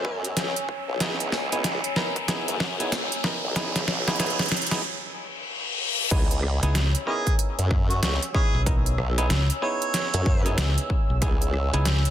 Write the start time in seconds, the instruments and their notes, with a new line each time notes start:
Already playing: wobble bass F#2, clav B3 D#4 E4 G#4, harmonica C#5, analog synth pad C#5 G#5 E6, riser
0.05 kick
0.24 closed hi-hat
0.36 wobble bass C#2, snare, closed hi-hat
0.56 closed hi-hat
0.69 kick
0.88 wobble bass B1
1.00 wobble bass C#2, clav B3 D#4 E4 G#4, kick, snare, closed hi-hat
1.20 closed hi-hat
1.32 snare
1.52 wobble bass C#2, clav B3 D#4 E4 G#4, closed hi-hat
1.64 snare, closed hi-hat
1.84 closed hi-hat
1.96 clav B3 D#4 E4 A#4, snare
2.16 kick, closed hi-hat
2.28 clav B3 D#4 E4 G#4, snare, closed hi-hat
2.48 wobble bass F#2, closed hi-hat
2.60 kick, snare
2.80 clav B3 D#4 E4 G#4, closed hi-hat
2.92 wobble bass C#2, snare, closed hi-hat
3.12 closed hi-hat
3.24 clav B3 D#4 E4 A#4, kick, snare
3.44 wobble bass B1
3.56 clav B3 D#4 E4 G#4, kick, snare, closed hi-hat
3.76 snare, closed hi-hat
3.88 wobble bass B1, snare
4.08 clav B3 D#4 E4 G#4, snare, closed hi-hat
4.16 snare, closed hi-hat
4.20 wobble bass C#2, clav B3 D#4 E4 G#4, closed hi-hat
4.26 closed hi-hat
4.30 closed hi-hat
4.39 snare, closed hi-hat
4.42 closed hi-hat
4.45 closed hi-hat
4.48 snare, closed hi-hat
4.52 closed hi-hat
4.57 closed hi-hat
4.62 closed hi-hat
4.67 closed hi-hat
4.71 clav B3 D#4 E4 G#4, kick, snare, closed hi-hat
4.84 reverse cymbal
6.11 wobble bass C#2, clav B3 D#4 E4 G#4, analog synth pad C#5 G#5 E6, kick, closed hi-hat, crash
6.31 closed hi-hat
6.43 cross-stick
6.63 fingered electric bass C#2, clav B3 D#4 E4 G#4, closed hi-hat
6.75 snare, closed hi-hat
6.95 closed hi-hat
7.06 clav B3 D#4 E4 A#4, harmonica C#4 G#4
7.27 kick, closed hi-hat
7.39 closed hi-hat
7.59 wobble bass F#2, closed hi-hat
7.71 kick, cross-stick
7.90 harmonica F#4, closed hi-hat
8.02 wobble bass C#2, harmonica F#4, snare, closed hi-hat
8.23 closed hi-hat
8.34 clav B3 D#4 E4 B4, harmonica C#4 G#4, kick
8.54 fingered electric bass B1
8.66 clav B3 D#4 E4 A#4, kick, closed hi-hat
8.86 closed hi-hat
8.98 wobble bass B1, cross-stick
9.18 clav B3 D#4 E4 G#4, closed hi-hat
9.30 fingered electric bass C#2, snare, closed hi-hat
9.50 closed hi-hat
9.62 clav B3 D#4 E4 G#4, harmonica C#5
9.82 closed hi-hat
9.94 snare, closed hi-hat
10.14 wobble bass F#2, closed hi-hat
10.26 kick
10.46 clav B3 D#4 E4 G#4, closed hi-hat
10.58 fingered electric bass C#2, snare, closed hi-hat
10.78 closed hi-hat
10.90 kick
11.10 fingered electric bass B1
11.22 wobble bass C#2, clav B3 D#4 E4 G#4, kick, cross-stick, closed hi-hat
11.42 closed hi-hat
11.54 cross-stick
11.74 fingered electric bass C#2, clav B3 D#4 E4 G#4, closed hi-hat
11.85 snare, closed hi-hat
12.05 closed hi-hat